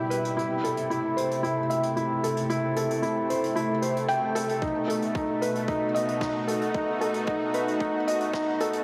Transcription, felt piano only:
0.00 0.37 E4 medium
0.00 0.10 B4 medium
0.00 0.40 E5 medium
0.00 0.39 G5 medium
0.10 0.26 B4 medium
0.37 0.63 E4 medium
0.64 0.89 A4 medium
0.90 1.16 E4 medium
1.17 1.42 C5 medium
1.43 1.59 E4 medium
1.70 1.95 E5 medium
1.97 2.22 E4 medium
2.24 2.39 A4 medium
2.50 2.75 E4 medium
2.77 3.02 A4 medium
3.02 3.28 E4 medium
3.30 3.55 C5 medium
3.56 3.71 E4 medium
3.82 4.08 C5 medium
4.09 4.34 G5 medium
4.35 4.61 A4 medium
4.62 4.87 D#4 medium
4.88 5.14 A4 medium
5.15 5.41 D#4 medium
5.42 5.67 B4 medium
5.68 5.84 D#4 medium
5.95 6.20 D#5 medium
6.21 6.46 D#4 medium
6.48 6.63 A4 medium
6.74 7.00 D#4 medium
7.01 7.26 A4 medium
7.27 7.53 D#4 medium
7.54 7.80 B4 medium
7.81 7.96 D#4 medium
8.08 8.33 D#5 medium
8.34 8.59 D#4 medium
8.61 8.76 A4 medium

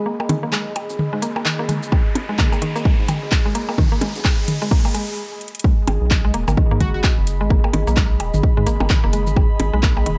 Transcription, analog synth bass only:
0.00 0.15 G#1 loud
0.29 0.41 G#1 loud
0.43 0.77 B1 loud
0.76 0.87 D#1 medium
0.90 0.97 G#1 medium
1.13 1.24 G#2 medium
1.22 1.34 G#1 medium
1.36 1.44 G#1 medium
1.60 1.84 F#1 medium
1.83 2.01 G#1 loud
2.16 2.27 G#1 loud
2.29 2.63 B1 loud
2.62 2.73 D#1 medium
2.76 2.83 G#1 medium
2.99 3.10 G#2 medium
3.09 3.20 G#1 medium
3.22 3.30 G#1 medium
3.46 3.70 F#1 medium
3.69 3.87 G#1 loud
4.02 4.13 G#1 loud
4.15 4.50 B1 loud
4.48 4.59 D#1 medium
4.62 4.69 G#1 medium
5.88 5.99 G#1 loud
6.01 6.36 B1 medium
6.34 6.45 D#1 medium
6.48 6.56 G#1 medium
6.71 6.82 G#2 medium
6.81 6.92 G#1 medium
6.94 7.02 G#1 medium
7.18 7.42 F#1 medium
7.41 7.59 G#1 loud
7.74 7.85 G#1 loud
7.87 8.22 B1 loud
8.20 8.31 D#1 medium
8.34 8.42 G#1 medium
8.57 8.68 G#2 medium
8.67 8.78 G#1 medium
8.80 8.88 G#1 medium
9.04 9.29 F#1 medium
9.27 9.45 G#1 loud
9.60 9.71 G#1 loud
9.74 10.08 B1 loud
10.06 10.17 D#1 medium

